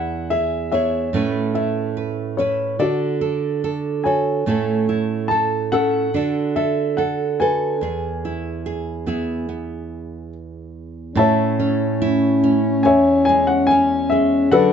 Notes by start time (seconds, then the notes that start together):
Already playing: E2 E4 G#4 F#5
0.30 G#4 E5
0.71 B3 E4 G#4 C#5 E5
1.13 A2 A3 C#4 E4 B4
1.55 E4 E5
1.97 B4
2.37 C#4 E4 B4 C#5
2.79 D3 F#4 A4 D5
3.21 A4
3.64 A4
4.04 F#4 A4 C#5 G#5
4.46 A2 A3 C#4 E4 A4
4.89 E4
5.28 A4 A5
5.72 C#4 E4 A4 F#5
6.14 D3 D4 F#4 A4
6.56 A4 E5
6.97 A4 F#5
7.40 F#4 A4 B4 G#5
7.81 E2 G#4
8.25 E4
8.66 G#4
9.06 B3 E4 G#4
9.49 B3
11.15 A2 C#4 E4 E5 A5
11.19 C#5
11.59 A3 C#4
12.01 C#4 E4
12.43 A3 C#4
12.83 E2 C#5 E5 G#5
13.25 G#3 G#5
13.47 F#5
13.67 G#5
13.71 C#4
14.10 G#3 G#4 E5
14.52 D3 F#3 D4 F#4 A4 B4 F#5